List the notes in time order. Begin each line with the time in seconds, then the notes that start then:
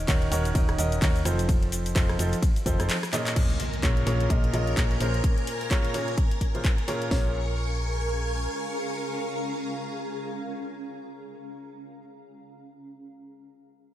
0.08 D#1 D#3 C#4 D#4 F#4 A#4 C#5, kick, clap, closed hi-hat, ride, shaker
0.22 closed hi-hat
0.31 D#1 D#3 C#4 D#4 F#4 A#4 C#5, open hi-hat, shaker
0.45 closed hi-hat, shaker
0.55 D#1 D#3 C#4 D#4 F#4 A#4 D#5, kick, closed hi-hat, ride, shaker
0.69 cross-stick, closed hi-hat
0.78 D#1 D#3 C#4 D#4 F#4 A#4 D#5, open hi-hat, shaker
0.92 closed hi-hat, shaker
1.02 D#2 D#3 C#4 D#4 F#4 A#4 C#5, kick, clap, closed hi-hat, ride, shaker
1.16 closed hi-hat, shaker
1.25 F1 F3 C4 D#4 F4 A4 C5, cross-stick, open hi-hat, shaker
1.39 closed hi-hat, shaker
1.49 kick, closed hi-hat, ride, shaker
1.63 closed hi-hat
1.72 open hi-hat, shaker
1.86 closed hi-hat, shaker
1.96 F1 F3 C4 D#4 F4 A4 C5, kick, clap, closed hi-hat, ride, shaker
2.09 cross-stick, closed hi-hat
2.19 F1 F3 C4 D#4 F4 A4 C5, open hi-hat, shaker
2.33 closed hi-hat, shaker
2.42 kick, closed hi-hat, ride, shaker
2.56 closed hi-hat, shaker
2.66 F1 F3 C4 D#4 F4 A4 C5, kick, open hi-hat, shaker
2.80 F1 F3 C4 D#4 F4 A4 C5, cross-stick, closed hi-hat, shaker
2.89 clap, closed hi-hat, ride, shaker
3.03 cross-stick, closed hi-hat, shaker
3.13 A#2 C#4 F4 G#4 A#4 D#5, clap, open hi-hat, shaker
3.27 clap, closed hi-hat, shaker
3.36 C#4 A#4 G#5 A#5, kick, closed hi-hat, crash, impact
3.50 closed hi-hat
3.60 G#4, open hi-hat
3.73 closed hi-hat
3.83 A#1 A#2 C#4 F4 G#4 A#4 C#5, kick, clap, closed hi-hat
3.97 closed hi-hat
4.05 A#1 A#2 C#4 F4 G#4 A#4 C#5 A#5, open hi-hat
4.11 F5
4.20 closed hi-hat
4.30 A#1 A#2 C#4 F4 G#4 A#4 D#5, kick, closed hi-hat
4.44 closed hi-hat
4.53 A#1 A#2 C#4 F4 G#4 A#4 D#5, open hi-hat
4.67 closed hi-hat
4.77 A#1 A#2 C#4 F4 G#4 A#4 C#5, kick, clap, closed hi-hat
4.91 closed hi-hat
5.00 A#1 A#2 C#4 F4 G#4 A#4 C5, open hi-hat
5.14 closed hi-hat
5.24 kick, closed hi-hat
5.38 closed hi-hat
5.47 open hi-hat
5.61 closed hi-hat
5.71 A#2 C#4 F4 G#4 A#4 C#5, kick, clap, closed hi-hat
5.85 closed hi-hat
5.94 A#2 C#4 F4 G#4 A#4 C#5, open hi-hat
6.08 closed hi-hat
6.18 kick, closed hi-hat
6.31 closed hi-hat
6.41 kick, open hi-hat
6.55 A#2 C#4 F4 G#4 A#4 C5, closed hi-hat
6.64 kick, clap, closed hi-hat
6.78 closed hi-hat
6.88 A#2 C#4 F4 G#4 A#4 C#5, open hi-hat
7.02 closed hi-hat
7.11 A#1 C#4 F4 G#4 A#4 C#5 G#5 C#6, kick, snare, open hi-hat
7.19 G#4
7.27 F5
7.33 A#5